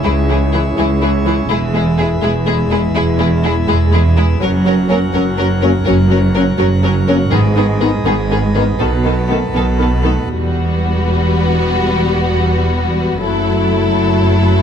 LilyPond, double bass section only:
\new Staff \with { instrumentName = "Double bass section" } { \clef bass \time 6/8 \key b \major \tempo 4. = 82 cis,4. cis,4. | e,,4. e,,4. | e,,4. e,,4. | fis,,4. fis,,4. |
fis,,4. fis,,4. | gis,,4. gis,,4. | b,,4. b,,4. | \key e \minor e,,2.~ |
e,,2. | fis,,2. | }